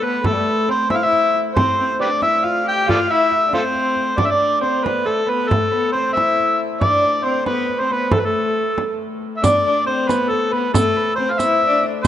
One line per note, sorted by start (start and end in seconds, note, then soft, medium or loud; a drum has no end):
0.00 4.19 A2 medium
0.00 0.22 B3 medium
0.00 0.24 A4 medium
0.00 0.47 B4 medium
0.00 0.27 B4 medium
0.00 0.75 D5 medium
0.24 0.34 A3 medium
0.24 2.44 A4 medium
0.24 0.69 A4 medium
0.24 frame drum medium
0.32 0.40 G3 medium
0.39 0.70 A3 medium
0.45 0.74 B4 medium
0.45 frame drum soft
0.68 0.90 C4 medium
0.68 1.57 C5 medium
0.68 0.90 C5 medium
0.90 1.03 E4 medium
0.90 1.05 E5 medium
0.90 0.98 E5 medium
0.90 frame drum medium
0.96 1.05 F5 medium
1.04 1.37 E4 medium
1.04 1.39 E5 medium
1.04 2.22 E5 medium
1.13 frame drum soft
1.55 1.76 C4 medium
1.55 1.96 C5 medium
1.55 3.53 C5 medium
1.55 frame drum medium
1.79 1.89 C4 medium
1.79 frame drum soft
1.99 2.23 D4 medium
1.99 2.09 G4 medium
1.99 2.09 B4 medium
1.99 3.84 D5 medium
1.99 2.20 D5 medium
2.22 2.45 E4 medium
2.22 2.49 E5 medium
2.22 2.46 E5 loud
2.22 frame drum medium
2.43 2.65 F4 medium
2.43 2.86 F5 medium
2.43 2.66 F5 medium
2.43 frame drum soft
2.66 2.89 G4 medium
2.66 2.87 G5 loud
2.86 3.09 F4 medium
2.86 3.13 F5 medium
2.86 frame drum medium
2.90 2.99 A4 medium
2.90 2.98 D5 medium
2.90 3.13 F5 loud
3.07 3.44 E4 medium
3.07 4.80 E5 medium
3.07 3.53 E5 loud
3.07 frame drum soft
3.32 frame drum soft
3.47 3.55 D4 medium
3.53 4.18 C4 medium
3.53 3.60 F4 medium
3.53 3.62 A4 medium
3.53 4.62 C5 medium
3.53 4.20 C5 medium
3.53 frame drum medium
3.75 frame drum soft
3.96 frame drum soft
4.18 9.43 A2 medium
4.18 4.31 D4 medium
4.18 4.27 D5 medium
4.18 4.31 D5 medium
4.18 frame drum medium
4.25 4.32 E5 medium
4.30 4.63 D4 medium
4.30 4.60 D5 loud
4.30 6.16 D5 medium
4.41 frame drum soft
4.61 4.85 C4 medium
4.61 4.85 C5 medium
4.61 4.90 C5 medium
4.84 5.06 B3 medium
4.84 5.08 B4 medium
4.84 5.26 B4 medium
4.84 frame drum medium
5.04 5.26 A3 medium
5.04 5.49 A4 medium
5.04 5.30 A4 medium
5.04 frame drum soft
5.26 5.51 B3 medium
5.26 5.71 B4 medium
5.26 5.49 B4 medium
5.48 5.71 A3 medium
5.48 5.92 A4 medium
5.48 7.69 A4 medium
5.48 frame drum medium
5.71 5.94 B3 medium
5.71 6.00 B4 medium
5.71 frame drum soft
5.92 6.17 C4 medium
5.92 6.12 C5 medium
5.92 7.25 C5 medium
6.13 6.65 E4 medium
6.13 6.60 E5 medium
6.13 7.87 E5 medium
6.17 frame drum medium
6.39 frame drum soft
6.81 7.22 D4 medium
6.81 7.26 D5 medium
6.81 7.04 D5 medium
6.81 frame drum medium
7.04 8.89 D5 medium
7.04 frame drum soft
7.24 7.45 C4 medium
7.24 7.45 C5 medium
7.24 7.54 C5 medium
7.45 7.76 B3 medium
7.45 7.81 B4 medium
7.45 7.86 B4 medium
7.45 frame drum medium
7.69 frame drum soft
7.80 7.92 C4 medium
7.80 7.97 C5 medium
7.80 7.93 C5 medium
7.90 8.12 B3 medium
7.90 9.93 B4 medium
7.90 8.14 B4 medium
8.10 8.24 A3 medium
8.10 8.21 A4 medium
8.10 frame drum medium
8.15 8.26 A4 medium
8.19 8.26 B4 medium
8.25 8.95 A3 medium
8.25 8.99 A4 medium
8.25 10.30 A4 medium
8.34 frame drum soft
8.78 frame drum medium
9.36 9.45 E5 medium
9.41 12.07 A2 medium
9.41 9.62 D4 medium
9.41 9.86 D5 medium
9.41 11.29 D5 medium
9.41 riq medium
9.41 frame drum medium
9.65 9.85 D4 medium
9.65 frame drum soft
9.86 10.09 C4 medium
9.86 10.09 C5 medium
9.86 10.14 C5 medium
10.08 10.52 B3 medium
10.08 10.30 B4 medium
10.08 10.51 B4 medium
10.08 riq soft
10.08 frame drum medium
10.29 10.54 A4 medium
10.29 10.74 A4 medium
10.29 frame drum soft
10.52 10.73 B3 medium
10.52 10.96 B4 medium
10.52 10.73 B4 medium
10.74 11.14 A3 medium
10.74 11.14 A4 medium
10.74 12.07 A4 medium
10.74 riq medium
10.74 frame drum medium
10.96 11.23 B4 medium
10.96 frame drum soft
11.15 11.28 C4 medium
11.15 11.32 C5 medium
11.15 12.05 C5 medium
11.31 11.40 F5 medium
11.38 11.66 E4 medium
11.38 11.88 E5 loud
11.38 12.07 E5 medium
11.38 riq soft
11.38 frame drum medium
11.62 frame drum soft
11.67 11.87 D4 medium
12.03 12.07 C5 loud